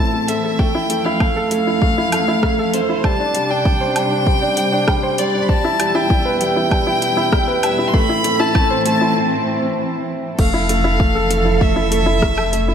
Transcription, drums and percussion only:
0.28 closed hi-hat medium
0.59 kick medium
0.90 closed hi-hat medium
1.20 kick loud
1.20 low woodblock medium
1.51 closed hi-hat medium
1.82 kick loud
2.12 closed hi-hat medium
2.12 low woodblock medium
2.43 kick medium
2.43 cross-stick medium
2.74 closed hi-hat medium
3.04 kick loud
3.04 low woodblock medium
3.35 closed hi-hat medium
3.65 kick loud
3.96 closed hi-hat medium
3.96 low woodblock medium
4.27 kick loud
4.57 closed hi-hat medium
4.88 kick loud
4.88 cross-stick medium
4.88 low woodblock medium
5.18 closed hi-hat medium
5.49 kick medium
5.80 closed hi-hat medium
5.80 low woodblock medium
6.10 kick loud
6.41 closed hi-hat medium
6.71 kick medium
6.71 low woodblock medium
7.02 closed hi-hat medium
7.33 kick loud
7.33 cross-stick medium
7.63 closed hi-hat medium
7.63 low woodblock medium
7.94 kick loud
8.24 closed hi-hat medium
8.55 kick loud
8.55 low woodblock medium
8.86 closed hi-hat medium
10.39 kick loud
10.39 crash medium
10.69 closed hi-hat medium
11.00 kick loud
11.31 closed hi-hat medium
11.61 kick loud
11.92 closed hi-hat medium
12.22 kick loud
12.22 cross-stick medium
12.38 low woodblock medium
12.53 closed hi-hat medium

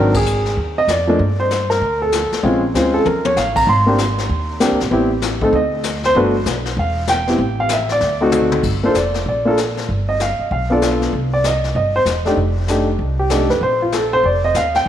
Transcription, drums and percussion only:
0.14 kick medium
0.14 crash medium
0.26 hi-hat pedal medium
0.45 snare soft
0.57 brush sweep soft
0.57 kick soft
0.88 snare medium
0.88 hi-hat pedal medium
1.19 brush sweep soft
1.19 kick soft
1.50 snare medium
1.50 hi-hat pedal soft
1.70 snare soft
1.81 brush sweep soft
1.81 kick soft
2.12 snare medium
2.12 hi-hat pedal medium
2.32 snare soft
2.43 brush sweep soft
2.43 kick soft
2.75 snare medium
2.75 hi-hat pedal medium
3.06 high tom soft
3.25 high tom medium
3.36 snare medium
3.36 hi-hat pedal medium
3.56 kick medium
3.56 crash medium
3.67 brush sweep soft
3.67 kick soft
3.98 snare medium
3.98 hi-hat pedal medium
4.18 snare soft
4.29 brush sweep soft
4.29 kick soft
4.60 snare medium
4.60 hi-hat pedal medium
4.80 snare soft
4.91 brush sweep soft
4.91 kick soft
5.22 snare medium
5.22 hi-hat pedal medium
5.41 kick medium
5.53 brush sweep soft
5.53 kick soft
5.83 snare medium
5.83 hi-hat pedal medium
6.04 snare soft
6.15 brush sweep soft
6.15 kick soft
6.46 snare medium
6.46 hi-hat pedal medium
6.65 snare soft
6.77 brush sweep soft
6.77 kick soft
7.07 snare medium
7.07 hi-hat pedal medium
7.27 snare soft
7.38 brush sweep soft
7.38 kick soft
7.69 snare medium
7.69 hi-hat pedal medium
7.89 snare soft
8.01 snare soft
8.32 hi-hat pedal medium
8.32 mid tom medium
8.52 mid tom medium
8.63 brush sweep soft
8.63 kick medium
8.63 crash medium
8.95 snare medium
8.95 hi-hat pedal soft
9.14 snare soft
9.26 brush sweep soft
9.26 kick soft
9.57 snare medium
9.57 hi-hat pedal medium
9.77 snare soft
9.89 brush sweep soft
9.89 kick soft
10.20 snare medium
10.20 hi-hat pedal soft
10.51 brush sweep soft
10.51 kick soft
10.82 snare medium
10.82 hi-hat pedal medium
11.01 snare soft
11.13 brush sweep soft
11.13 kick soft
11.44 snare medium
11.44 hi-hat pedal soft
11.64 snare soft
11.75 brush sweep soft
11.75 kick soft
12.06 snare medium
12.06 hi-hat pedal medium
12.26 snare soft
12.37 brush sweep soft
12.37 kick soft
12.68 snare medium
12.68 hi-hat pedal medium
12.99 brush sweep soft
12.99 kick soft
13.30 snare medium
13.30 hi-hat pedal medium
13.50 snare soft
13.61 brush sweep soft
13.61 kick soft
13.92 snare medium
13.92 hi-hat pedal soft
14.23 brush sweep soft
14.23 kick soft
14.54 snare medium
14.54 hi-hat pedal medium
14.74 snare soft

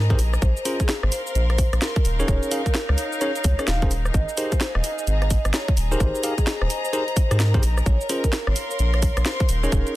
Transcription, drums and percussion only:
0.10 kick loud
0.10 closed hi-hat soft
0.19 open hi-hat loud
0.19 shaker medium
0.33 cross-stick medium
0.33 shaker soft
0.42 kick loud
0.42 closed hi-hat medium
0.42 shaker soft
0.57 shaker soft
0.65 open hi-hat loud
0.65 shaker medium
0.80 kick medium
0.80 closed hi-hat medium
0.80 shaker soft
0.89 snare loud
0.89 shaker soft
1.03 cross-stick medium
1.12 open hi-hat loud
1.12 shaker medium
1.27 shaker soft
1.35 closed hi-hat medium
1.35 shaker soft
1.50 cross-stick medium
1.50 closed hi-hat soft
1.58 kick loud
1.58 open hi-hat loud
1.58 shaker medium
1.73 cross-stick medium
1.73 closed hi-hat medium
1.73 shaker soft
1.82 snare loud
1.82 shaker soft
1.96 kick loud
1.96 closed hi-hat soft
2.05 open hi-hat loud
2.05 shaker medium
2.20 shaker soft
2.28 kick loud
2.28 closed hi-hat medium
2.28 shaker soft
2.43 closed hi-hat soft
2.43 shaker soft
2.51 open hi-hat loud
2.51 shaker medium
2.66 kick medium
2.66 closed hi-hat medium
2.66 shaker soft
2.75 snare loud
2.75 shaker soft
2.89 cross-stick medium
2.98 open hi-hat loud
2.98 shaker medium
3.12 shaker soft
3.21 closed hi-hat medium
3.21 shaker soft
3.36 closed hi-hat soft
3.36 shaker soft
3.44 kick loud
3.44 open hi-hat loud
3.44 shaker medium
3.59 cross-stick medium
3.59 closed hi-hat medium
3.59 shaker soft
3.68 snare loud
3.68 shaker soft
3.82 kick loud
3.82 closed hi-hat soft
3.91 open hi-hat loud
3.91 shaker medium
4.05 cross-stick medium
4.05 shaker soft
4.14 kick loud
4.14 closed hi-hat medium
4.14 shaker soft
4.29 shaker soft
4.37 open hi-hat loud
4.37 shaker medium
4.52 kick medium
4.52 closed hi-hat medium
4.52 shaker soft
4.61 snare loud
4.61 shaker soft
4.75 cross-stick medium
4.84 open hi-hat loud
4.84 shaker medium
4.98 shaker soft
5.07 closed hi-hat medium
5.07 shaker soft
5.22 cross-stick soft
5.22 closed hi-hat soft
5.30 kick loud
5.30 open hi-hat loud
5.30 shaker medium
5.45 cross-stick medium
5.45 closed hi-hat medium
5.45 shaker soft
5.54 snare loud
5.54 shaker soft
5.68 kick loud
5.68 closed hi-hat medium
5.77 open hi-hat loud
5.77 shaker medium
5.92 shaker soft
6.00 kick loud
6.00 closed hi-hat medium
6.00 shaker soft
6.15 shaker soft
6.23 open hi-hat loud
6.23 shaker medium
6.38 kick medium
6.38 closed hi-hat medium
6.38 shaker soft
6.47 snare loud
6.47 shaker soft
6.62 cross-stick medium
6.70 open hi-hat loud
6.70 shaker medium
6.85 shaker soft
6.93 closed hi-hat medium
6.93 shaker soft
7.08 closed hi-hat soft
7.16 kick loud
7.16 open hi-hat loud
7.16 shaker medium
7.31 cross-stick medium
7.31 closed hi-hat medium
7.31 shaker soft
7.40 snare loud
7.40 shaker soft
7.54 kick loud
7.54 closed hi-hat medium
7.63 open hi-hat loud
7.63 shaker medium
7.77 cross-stick medium
7.77 shaker soft
7.86 kick loud
7.86 closed hi-hat medium
7.86 shaker soft
8.01 shaker soft
8.09 open hi-hat loud
8.09 shaker medium
8.24 kick medium
8.24 closed hi-hat medium
8.24 shaker soft
8.33 snare loud
8.33 shaker soft
8.47 cross-stick medium
8.56 open hi-hat loud
8.56 shaker medium
8.71 shaker soft
8.79 closed hi-hat medium
8.79 shaker soft
8.94 cross-stick soft
8.94 closed hi-hat soft
9.02 kick loud
9.02 open hi-hat loud
9.02 shaker medium
9.17 cross-stick medium
9.17 closed hi-hat medium
9.17 shaker soft
9.26 snare loud
9.26 shaker soft
9.40 kick loud
9.40 closed hi-hat medium
9.49 open hi-hat loud
9.49 shaker medium
9.63 shaker soft
9.72 kick loud
9.72 closed hi-hat medium
9.72 shaker soft
9.87 closed hi-hat soft
9.87 shaker soft

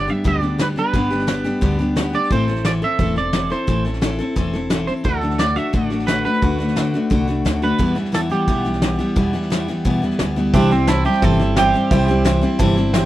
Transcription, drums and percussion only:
0.08 snare soft
0.25 kick medium
0.25 snare soft
0.42 snare soft
0.59 snare loud
0.59 hi-hat pedal medium
0.77 snare soft
0.93 kick medium
0.93 snare soft
1.11 snare soft
1.20 snare soft
1.28 snare medium
1.28 hi-hat pedal medium
1.45 snare soft
1.62 kick medium
1.62 snare soft
1.80 snare soft
1.96 snare loud
1.96 hi-hat pedal medium
2.14 snare soft
2.31 kick medium
2.31 snare soft
2.48 snare soft
2.56 snare soft
2.65 snare medium
2.65 hi-hat pedal medium
2.82 snare soft
2.99 kick loud
2.99 snare soft
3.16 snare soft
3.33 snare loud
3.33 hi-hat pedal medium
3.51 snare soft
3.68 kick loud
3.68 snare soft
3.85 snare soft
3.94 snare soft
4.02 snare loud
4.02 hi-hat pedal medium
4.19 snare soft
4.36 kick medium
4.36 snare soft
4.54 snare soft
4.70 snare loud
4.70 hi-hat pedal medium
4.88 snare soft
5.04 kick loud
5.04 snare soft
5.22 snare soft
5.31 snare soft
5.39 snare medium
5.39 hi-hat pedal medium
5.56 snare soft
5.73 kick medium
5.73 snare soft
5.91 snare soft
6.00 snare soft
6.08 snare loud
6.08 hi-hat pedal medium
6.25 snare soft
6.33 snare soft
6.42 kick loud
6.42 snare soft
6.60 snare soft
6.68 snare soft
6.76 snare medium
6.76 hi-hat pedal medium
6.94 snare soft
7.11 kick medium
7.11 snare soft
7.28 snare soft
7.46 snare loud
7.46 hi-hat pedal medium
7.62 snare soft
7.79 kick medium
7.79 snare soft
7.96 snare soft
8.05 snare soft
8.14 snare loud
8.14 hi-hat pedal medium
8.31 snare soft
8.48 kick medium
8.48 snare soft
8.65 snare soft
8.73 snare soft
8.82 snare loud
8.82 hi-hat pedal medium
9.00 snare soft
9.16 kick medium
9.16 snare soft
9.34 snare soft
9.43 snare soft
9.52 snare loud
9.52 hi-hat pedal medium
9.69 snare soft
9.85 kick loud
9.85 snare soft
10.03 snare soft
10.11 snare soft
10.19 snare loud
10.19 hi-hat pedal medium
10.36 snare soft
10.53 kick loud
10.53 snare soft
10.71 snare soft
10.87 snare loud
10.87 hi-hat pedal medium
11.05 snare soft
11.13 snare soft
11.22 kick loud
11.22 snare soft
11.39 snare soft
11.57 snare loud
11.57 hi-hat pedal medium
11.74 snare soft
11.91 kick loud
11.91 snare soft
12.08 snare soft
12.25 snare loud
12.25 hi-hat pedal medium
12.42 snare soft
12.60 kick loud
12.60 snare soft
12.77 snare soft
12.94 snare loud
12.94 hi-hat pedal medium

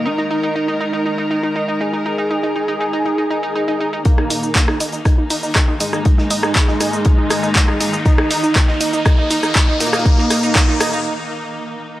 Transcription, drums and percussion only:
4.05 kick loud
4.05 closed hi-hat medium
4.05 shaker soft
4.18 cross-stick soft
4.30 closed hi-hat medium
4.30 open hi-hat loud
4.30 shaker medium
4.43 shaker soft
4.56 kick loud
4.56 snare loud
4.56 clap loud
4.56 shaker soft
4.68 cross-stick medium
4.68 snare soft
4.80 closed hi-hat medium
4.80 open hi-hat medium
4.80 shaker medium
4.93 closed hi-hat soft
4.93 shaker soft
5.06 kick loud
5.06 cross-stick soft
5.06 closed hi-hat medium
5.06 shaker soft
5.30 open hi-hat medium
5.30 open hi-hat loud
5.30 shaker medium
5.43 shaker soft
5.55 kick loud
5.55 cross-stick medium
5.55 snare loud
5.55 clap loud
5.55 shaker soft
5.80 closed hi-hat medium
5.80 open hi-hat medium
5.80 shaker medium
5.93 cross-stick medium
5.93 shaker soft
6.05 kick loud
6.05 closed hi-hat medium
6.05 shaker soft
6.18 snare soft
6.30 closed hi-hat medium
6.30 open hi-hat loud
6.30 shaker medium
6.43 cross-stick medium
6.43 shaker soft
6.55 kick loud
6.55 snare loud
6.55 clap loud
6.55 closed hi-hat medium
6.55 shaker soft
6.68 snare soft
6.80 cross-stick soft
6.80 closed hi-hat medium
6.80 open hi-hat loud
6.80 shaker medium
6.93 shaker soft
7.05 kick loud
7.05 closed hi-hat medium
7.05 shaker soft
7.30 cross-stick medium
7.30 closed hi-hat medium
7.30 open hi-hat loud
7.30 shaker medium
7.43 shaker soft
7.55 kick loud
7.55 snare loud
7.55 clap loud
7.55 closed hi-hat medium
7.55 shaker soft
7.68 cross-stick soft
7.80 snare medium
7.80 closed hi-hat medium
7.80 open hi-hat loud
7.80 shaker medium
7.93 shaker soft
8.06 kick loud
8.06 closed hi-hat medium
8.06 shaker soft
8.18 cross-stick medium
8.30 closed hi-hat medium
8.30 open hi-hat loud
8.30 shaker medium
8.43 shaker soft
8.56 kick loud
8.56 cross-stick medium
8.56 snare loud
8.56 clap loud
8.56 closed hi-hat medium
8.56 shaker soft
8.68 snare soft
8.81 closed hi-hat medium
8.81 open hi-hat loud
8.81 shaker medium
8.93 closed hi-hat soft
8.93 shaker soft
9.05 kick loud
9.05 cross-stick medium
9.05 closed hi-hat medium
9.05 shaker soft
9.30 open hi-hat medium
9.30 open hi-hat loud
9.30 shaker medium
9.43 cross-stick medium
9.43 shaker soft
9.55 kick loud
9.55 snare loud
9.55 clap loud
9.55 shaker soft
9.80 snare loud
9.80 closed hi-hat medium
9.80 open hi-hat loud
9.80 shaker medium
9.86 snare medium
9.86 closed hi-hat medium
9.93 cross-stick medium
9.93 snare medium
9.93 closed hi-hat medium
9.93 shaker soft
9.99 snare medium
9.99 closed hi-hat medium
10.05 kick loud
10.05 closed hi-hat medium
10.05 shaker soft
10.18 snare medium
10.30 cross-stick medium
10.30 closed hi-hat medium
10.30 open hi-hat loud
10.30 shaker medium
10.43 shaker soft
10.55 kick loud
10.55 snare loud
10.55 clap loud
10.55 closed hi-hat medium
10.55 shaker soft
10.68 snare medium
10.80 cross-stick medium
10.80 closed hi-hat medium
10.80 open hi-hat loud
10.80 shaker medium
10.93 shaker soft

